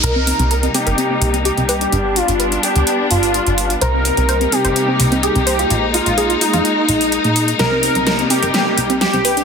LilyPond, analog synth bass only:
\new Staff \with { instrumentName = "Analog synth bass" } { \clef bass \time 4/4 \key c \minor \tempo 4 = 127 c,8 r16 c,8 r8 g,,16 r8 c,8 r16 c,8 r16 | g,,8 r16 g,,8 r8 d,16 r8 g,,8 r16 g,,8 r16 | c,8 r16 c,8 r8 g,,16 r8 c,8 r16 c,8 r16 | bes,,8 r16 bes,,8 r8 f,16 r8 bes,,8 r16 bes,8 r16 |
c,8 r16 c,8 r8 g,,16 r8 c,8 r16 c,8 r16 | }